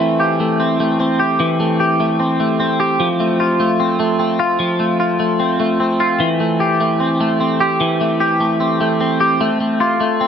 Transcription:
clean electric guitar
Already playing: E3 C4
0.00 A3
0.20 G4
0.40 A3
0.60 C4
0.80 A3
1.00 C4
1.19 G4
1.40 E3
1.60 A3
1.80 G4
2.00 A3
2.20 C4
2.40 A3
2.60 C4
2.80 G4
3.00 F3
3.20 A3
3.40 F4
3.60 A3
3.80 C4
4.00 A3
4.19 C4
4.39 F4
4.59 F3
4.79 A3
5.00 F4
5.19 A3
5.40 C4
5.60 A3
5.80 C4
6.00 F4
6.20 E3
6.40 A3
6.60 G4
6.80 A3
7.00 C4
7.20 A3
7.40 C4
7.60 G4
7.80 E3
8.01 A3
8.20 G4
8.40 A3
8.60 C4
8.80 A3
9.01 C4
9.20 G4
9.41 A3
9.60 A3
9.80 F4
10.00 A3
10.21 C4

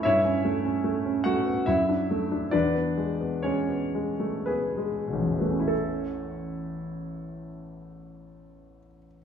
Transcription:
grand piano
0.03 G2 E4 C#5 E5
0.25 C#4
0.45 A3
0.65 C#4
0.84 A3
1.05 C#4
1.24 A3 F#4 F#5
1.46 B3
1.66 F#2 E4 E5
1.89 D4
2.11 A3
2.31 D4
2.51 E2 D4 B4 D5
2.75 B3
2.97 G#3
3.21 B3
3.43 G#3 C#4 C#5
3.69 B3
3.95 G#3
4.20 A3
4.46 B3 G#4 B4
4.77 G#3
5.08 B2
5.13 A1
5.22 E2
5.31 E3
5.39 A3 B3
5.51 C#4
5.60 E4
5.68 A4

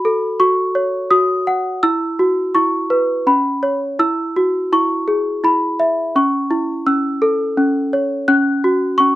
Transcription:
celesta
Already playing: F#4 B5
0.05 A4
0.40 F#4 C#6
0.75 C#5
1.11 F#4 D#6
1.47 F#5
1.83 E4 E6
2.19 F#4
2.55 E4 C#6
2.90 B4
3.27 C#4 B5
3.63 C#5
3.99 E4 E6
4.36 F#4
4.73 E4 C#6
5.08 G#4
5.44 E4 B5
5.80 E5
6.16 C#4 C#6
6.51 E4
6.87 C#4 E6
7.22 A4
7.57 C#4
7.93 C#5
8.28 C#4 F#6
8.64 F#4
8.98 C#4 C#6

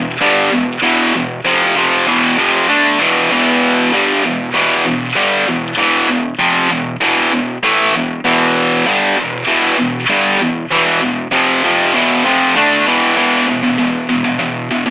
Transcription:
distorted electric guitar
Already playing: E2 B2
0.21 G2 D3 G3
0.51 E2 B2
0.82 E2 B2 E3
1.14 E2 B2
1.45 F2 C3 F3
1.76 F2 C3 F3
2.07 E2 B2 E3
2.38 F2 C3 F3
2.69 D3 A3 D4
3.00 E2 B2 E3
3.31 E2 B2 E3
3.93 G2 D3 G3
4.23 E2 B2
4.54 E2 B2 E3
4.85 E2 B2
5.16 G2 D3 G3
5.47 E2 B2
5.77 E2 B2 E3
6.08 E2 B2
6.39 F2 C3 F3
6.70 E2 B2
7.01 E2 B2 E3
7.32 E2 B2
7.63 A2 E3 A3
7.94 E2 B2
8.24 E2 B2 E3
8.86 G2 D3 G3
9.17 E2 B2
9.47 E2 B2 E3
9.78 E2 B2
10.10 G2 D3 G3
10.40 E2 B2
10.71 E2 B2 E3
11.02 E2 B2
11.32 F2 C3 F3
11.64 F2 C3 F3
11.94 E2 B2 E3
12.24 F2 C3 F3
12.56 D3 A3 D4
12.86 E2 B2 E3
13.17 E2 B2 E3
13.48 E2 B2
13.64 E2 B2
13.78 E2 B2
14.09 E2 B2
14.24 E2 B2
14.39 E2 B2
14.71 E2 B2
14.86 E2 B2

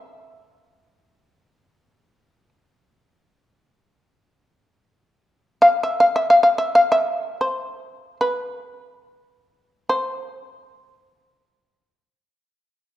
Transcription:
shamisen
Already playing: E5
5.62 F5
5.83 E5
6.00 F5
6.16 E5
6.30 F5
6.43 F5
6.58 E5
6.75 F5
6.92 E5
7.41 C5
8.21 B4
9.89 C5

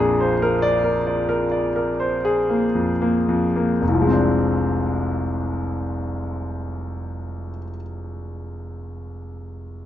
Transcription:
grand piano
Already playing: A#1 F2 A#3 D4
0.00 G#4
0.20 C5
0.42 A#4
0.62 D5
0.84 A#4
1.07 D5
1.29 A#4
1.51 D5
1.76 A#4
2.00 C5
2.25 G#4
2.49 A#3
2.75 F2
3.02 A#3
3.29 F2
3.56 A#3
3.82 F1
3.88 C2
3.94 F3
4.01 G#3
4.07 C4
4.14 D4

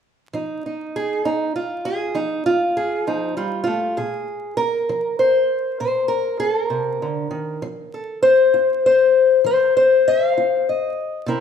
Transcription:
steel-string acoustic guitar
0.33 F3 D#4
0.66 D#4
0.96 G#4
1.25 C4 D#4
1.56 F4
1.85 G#4
2.15 F3 D#4
2.46 F4
2.77 G#4
3.07 F3 D#4
3.37 G3 F4
3.64 A3 F4
3.97 A#2 G#4
4.57 A#4
4.89 F3
5.19 C5
5.80 A#2 C5
6.08 A#4
6.40 A4
6.63 A#4
6.70 C3
7.02 D3
7.31 D#3
7.62 F3
7.94 A4
8.22 C5
8.54 F4
8.86 C5
9.44 F3 C5
9.77 C5
10.08 E5
10.28 F5
10.37 F4
10.69 D#5
11.26 C3 C4 E4 A#4

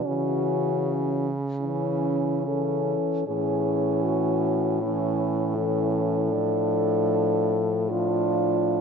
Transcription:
french horn
0.04 C#3 E3 C#4 F#4
1.60 E3 C#4 E4
2.46 E3 C#4 A4
3.26 A2 E3 C#4 G#4
4.04 F#4
4.82 E3 C#4 E4
5.55 E3 C#4 A4
5.91 A4
6.32 F3 D4
7.89 F3 D4 F4

